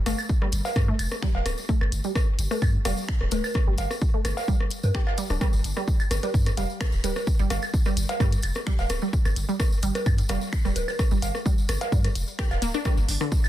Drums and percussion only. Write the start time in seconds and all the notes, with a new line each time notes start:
0.06 cross-stick, closed hi-hat, tambourine, cowbell
0.18 tambourine, claves
0.29 kick, tambourine
0.42 cross-stick
0.52 closed hi-hat, tambourine
0.65 tambourine, cowbell, low bongo
0.76 kick, cross-stick, tambourine
0.99 closed hi-hat, tambourine, claves
1.11 cross-stick, tambourine
1.22 finger snap, kick
1.35 cowbell, low bongo
1.46 cross-stick, closed hi-hat, tambourine
1.58 tambourine
1.69 kick, tambourine
1.81 cross-stick, claves
1.92 closed hi-hat, tambourine
2.04 tambourine
2.15 kick, cross-stick, tambourine
2.39 closed hi-hat, tambourine
2.51 cross-stick, tambourine, low bongo
2.62 kick, tambourine, claves
2.85 cross-stick, closed hi-hat, tambourine, cowbell
2.97 tambourine
3.08 finger snap, kick
3.21 cross-stick
3.31 closed hi-hat, tambourine, low bongo
3.44 tambourine, low bongo, claves
3.54 kick, cross-stick, tambourine
3.78 closed hi-hat, tambourine, cowbell
3.91 cross-stick, tambourine
4.01 kick, tambourine
4.25 cross-stick, closed hi-hat, tambourine, claves
4.37 tambourine, cowbell, low bongo
4.48 kick, tambourine
4.60 cross-stick
4.70 closed hi-hat, tambourine
4.83 tambourine, low bongo
4.94 finger snap, kick, cross-stick, tambourine
5.07 cowbell, low bongo, claves
5.18 closed hi-hat, tambourine
5.30 cross-stick, tambourine
5.41 kick, cross-stick, tambourine
5.53 tambourine
5.64 closed hi-hat, tambourine
5.77 cross-stick, tambourine
5.88 kick, tambourine
6.00 tambourine, claves
6.11 cross-stick, closed hi-hat, tambourine
6.23 closed hi-hat, tambourine, low bongo
6.34 kick, tambourine
6.46 cross-stick, closed hi-hat, tambourine
6.57 closed hi-hat, tambourine, cowbell
6.70 tambourine
6.81 finger snap, kick, cross-stick, tambourine, claves
6.92 tambourine
7.04 closed hi-hat, tambourine, low bongo
7.16 cross-stick, tambourine, low bongo
7.27 kick, tambourine
7.39 tambourine
7.50 cross-stick, closed hi-hat, tambourine, cowbell
7.62 tambourine, claves
7.74 kick, tambourine
7.85 cross-stick, tambourine
7.97 closed hi-hat, tambourine
8.09 closed hi-hat, tambourine, cowbell, low bongo
8.20 kick, cross-stick, tambourine
8.32 closed hi-hat, tambourine
8.42 closed hi-hat, tambourine, claves
8.55 cross-stick, tambourine
8.66 finger snap, kick, tambourine
8.79 tambourine, cowbell, low bongo
8.90 cross-stick, closed hi-hat, tambourine
9.02 tambourine
9.13 kick, tambourine
9.25 cross-stick, tambourine, claves
9.36 closed hi-hat, tambourine
9.49 tambourine
9.60 kick, cross-stick, tambourine
9.72 tambourine
9.83 closed hi-hat, tambourine
9.95 cross-stick, closed hi-hat, tambourine, low bongo
10.06 kick, tambourine, claves
10.18 closed hi-hat, tambourine
10.29 cross-stick, closed hi-hat, tambourine, cowbell
10.41 tambourine
10.53 finger snap, kick, tambourine
10.65 cross-stick, tambourine
10.76 closed hi-hat, tambourine, low bongo
10.88 tambourine, low bongo, claves
10.99 kick, cross-stick, tambourine
11.11 tambourine
11.22 closed hi-hat, tambourine, cowbell
11.35 cross-stick, tambourine
11.46 kick, tambourine
11.58 tambourine
11.69 cross-stick, closed hi-hat, tambourine, claves
11.81 closed hi-hat, tambourine, cowbell, low bongo
11.92 kick, tambourine
12.04 cross-stick, closed hi-hat, tambourine
12.15 closed hi-hat, tambourine
12.28 tambourine
12.39 finger snap, kick, cross-stick, tambourine
12.51 tambourine, cowbell, low bongo, claves
12.62 closed hi-hat, tambourine
12.74 cross-stick, tambourine
12.85 kick, cross-stick, tambourine
12.97 tambourine
13.09 open hi-hat, tambourine
13.20 cross-stick, tambourine
13.32 kick, tambourine
13.44 tambourine, claves